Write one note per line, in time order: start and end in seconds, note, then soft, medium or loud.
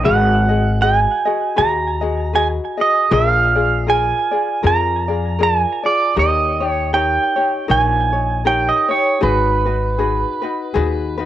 0.04 1.05 G#1 loud
0.04 0.50 F#4 medium
0.04 0.48 G#4 medium
0.04 0.49 B4 medium
0.04 0.47 D#5 medium
0.04 0.84 F#5 medium
0.49 0.81 F#4 soft
0.49 0.82 G#4 soft
0.49 0.81 D#5 soft
0.81 1.26 F#4 soft
0.81 1.25 G#4 medium
0.81 1.26 B4 soft
0.81 1.24 D#5 medium
0.81 1.61 G#5 medium
1.25 1.56 F#4 soft
1.25 1.56 G#4 soft
1.25 1.57 D#5 medium
1.56 2.58 D#2 medium
1.56 2.02 F#4 medium
1.56 2.01 G#4 medium
1.56 2.02 B4 medium
1.56 2.00 D#5 medium
1.56 2.35 A#5 loud
2.01 2.33 F#4 soft
2.01 2.34 G#4 soft
2.01 2.34 D#5 medium
2.33 2.78 F#4 medium
2.33 2.77 G#4 medium
2.33 2.78 B4 medium
2.33 2.76 D#5 medium
2.33 2.47 G#5 medium
2.78 3.11 F#4 soft
2.78 3.11 G#4 soft
2.78 3.11 D#5 soft
2.78 3.13 D#5 medium
3.11 4.11 A#1 loud
3.11 3.55 F4 medium
3.11 3.55 G#4 medium
3.11 3.55 A#4 medium
3.11 3.54 D5 medium
3.11 3.91 F5 medium
3.55 3.87 F4 soft
3.55 3.87 G#4 soft
3.55 3.88 D5 soft
3.87 4.32 F4 medium
3.87 4.31 G#4 medium
3.87 4.31 A#4 soft
3.87 4.30 D5 medium
3.87 4.67 G#5 medium
4.31 4.62 F4 soft
4.31 4.63 G#4 soft
4.31 4.63 D5 soft
4.63 5.63 F2 medium
4.63 5.08 F4 medium
4.63 5.08 G#4 medium
4.63 5.08 A#4 medium
4.63 5.07 D5 medium
4.63 5.43 A#5 loud
5.08 5.39 F4 soft
5.08 5.39 G#4 soft
5.08 5.40 D5 soft
5.39 5.84 F4 medium
5.39 5.83 G#4 medium
5.39 5.84 A#4 medium
5.39 5.82 D5 medium
5.43 5.60 A5 medium
5.60 5.87 G#5 medium
5.83 6.16 F4 soft
5.83 6.16 G#4 soft
5.83 6.16 D5 medium
5.83 6.15 D5 medium
6.16 7.16 D#2 loud
6.16 6.61 D#4 medium
6.16 6.60 G4 medium
6.16 6.61 A#4 medium
6.16 6.59 C#5 medium
6.16 6.71 D#5 medium
6.60 6.92 D#4 soft
6.60 6.93 G4 soft
6.60 6.93 C#5 soft
6.71 6.90 C#5 medium
6.93 7.37 D#4 medium
6.93 7.36 G4 medium
6.93 7.37 A#4 medium
6.93 7.35 C#5 medium
6.93 7.71 G5 medium
7.36 7.67 D#4 soft
7.36 7.67 G4 soft
7.36 7.68 C#5 medium
7.68 8.69 A#1 loud
7.68 8.13 D#4 medium
7.68 8.13 A#4 medium
7.68 8.11 C#5 medium
7.68 8.46 G#5 medium
8.12 8.44 D#4 soft
8.12 8.44 C#5 soft
8.45 8.89 D#4 medium
8.45 8.89 G4 medium
8.45 8.90 A#4 medium
8.45 8.87 C#5 medium
8.45 8.69 G5 medium
8.69 8.91 D#5 medium
8.88 9.20 D#4 soft
8.88 9.21 G4 soft
8.88 9.22 C#5 medium
8.88 9.23 C#5 medium
9.21 10.22 G#1 loud
9.21 9.66 D#4 medium
9.21 9.65 F#4 medium
9.21 9.66 G#4 medium
9.21 9.64 B4 medium
9.21 11.25 B4 medium
9.65 9.97 D#4 soft
9.65 9.98 F#4 soft
9.65 9.98 B4 soft
9.98 10.43 D#4 medium
9.98 10.42 F#4 medium
9.98 10.43 G#4 soft
9.98 10.41 B4 medium
10.42 10.73 D#4 soft
10.42 10.74 F#4 medium
10.42 10.74 B4 medium
10.74 11.25 D#2 medium
10.74 11.19 D#4 medium
10.74 11.18 F#4 medium
10.74 11.19 G#4 medium
10.74 11.16 B4 medium
11.18 11.25 D#4 soft
11.18 11.25 F#4 medium
11.18 11.25 B4 medium